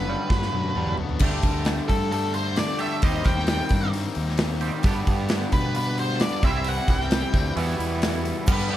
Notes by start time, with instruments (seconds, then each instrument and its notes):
Already playing: fingered electric bass F#1, overdriven electric guitar G2 D3 B3, lead electric guitar B4
0.07 distorted electric guitar G2 D3 G3, overdriven electric guitar F#3
0.30 fingered electric bass G2, distorted electric guitar G2 D3, kick, snare
0.42 snare
0.52 fingered electric bass F#2, distorted electric guitar G2 D3, overdriven electric guitar F#3, high tom
0.64 high tom
0.75 fingered electric bass E2, distorted electric guitar G2 D3 G3, overdriven electric guitar D4, mid tom
0.87 mid tom
0.97 fingered electric bass D2, distorted electric guitar G2 D3, overdriven electric guitar B3, floor tom
1.09 floor tom
1.19 fingered electric bass D2, distorted electric guitar D3 A3, overdriven electric guitar G3, kick, crash
1.24 distorted electric guitar D4 G4
1.42 fingered electric bass D2, kick, open hi-hat
1.65 snare, open hi-hat
1.88 fingered electric bass G2, lead electric guitar A4, kick, open hi-hat
2.11 overdriven electric guitar D3 G3 A3 D4, lead electric guitar A4, open hi-hat
2.34 lead electric guitar C5, open hi-hat
2.56 lead electric guitar D5, snare, open hi-hat
2.78 distorted electric guitar D3 A3 D4 G4, lead electric guitar E5, open hi-hat
3.02 fingered electric bass D#2, distorted electric guitar D#3 G3 C4 G4, lead electric guitar D#5, kick, open hi-hat
3.07 overdriven electric guitar D#4
3.25 fingered electric bass D#2, lead electric guitar G5, kick, open hi-hat
3.38 snare
3.47 snare, open hi-hat
3.69 fingered electric bass G2, kick, open hi-hat
3.93 overdriven electric guitar D#3 G3 C4 D#4, open hi-hat
4.15 fingered electric bass D#2, open hi-hat
4.28 snare
4.38 snare, open hi-hat
4.61 distorted electric guitar D#3 G3 C4 G4, open hi-hat
4.83 distorted electric guitar G2 D3 G3 B3 D4 G4, fingered electric bass G2, kick, open hi-hat
5.07 fingered electric bass G2, kick, open hi-hat
5.29 snare, open hi-hat
5.52 fingered electric bass B2, lead electric guitar B4, kick, open hi-hat
5.73 overdriven electric guitar G2 D3 G3 B3 D4, lead electric guitar B4, open hi-hat
5.98 lead electric guitar C5, open hi-hat
6.11 snare
6.20 lead electric guitar D5, snare, open hi-hat
6.42 fingered electric bass C2, distorted electric guitar C3 E3 G3 C4 E4, lead electric guitar E5, kick, open hi-hat
6.64 open hi-hat
6.69 lead electric guitar F#5
6.88 fingered electric bass C2, lead electric guitar G5, kick, open hi-hat
7.01 snare
7.11 snare, open hi-hat
7.33 fingered electric bass D2, overdriven electric guitar G3 C4 E4, kick, open hi-hat
7.37 overdriven electric guitar C3
7.55 distorted electric guitar E2 B2 E3 G3 B3 E4, fingered electric bass E2, open hi-hat
7.79 fingered electric bass E2, open hi-hat
8.02 snare, open hi-hat
8.25 open hi-hat
8.46 distorted electric guitar G2 D3 G3 B3 D4 G4, fingered electric bass G2, pipe organ A4 G5 B5, kick, crash, shaker
8.52 lead electric guitar B4
8.60 shaker
8.69 distorted electric guitar G2 D3 G3 B3 D4 G4